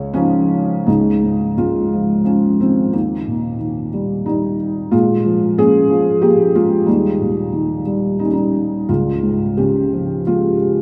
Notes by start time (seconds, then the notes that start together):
Already playing: C#2 G#4 C#5
0.13 F3 C#4 D#4 F4
0.86 C#2 G#3 D#4
1.24 G#2
1.57 C#3 G#3 F4
1.93 F3
2.24 F3 C#4
2.60 D#3 C4
2.92 D#2 D#3 A#3
3.27 A#2
3.59 D#3
3.93 G3
4.26 G3 D#4
4.91 A#2 G#3 F4
5.26 F3
5.58 A#2 C#4 G#4
5.91 F3
6.21 A#3 G4
6.55 G#3 F4
6.86 D#2 G3 D#4
7.20 A#2
7.52 D#3
7.86 G3
8.19 G3 D#4
8.24 C#4
8.33 G3 D#4
8.89 C#2 G#3 F4
9.23 G#2
9.57 C#3 C#4 G4
9.92 F3
10.27 G#3 F4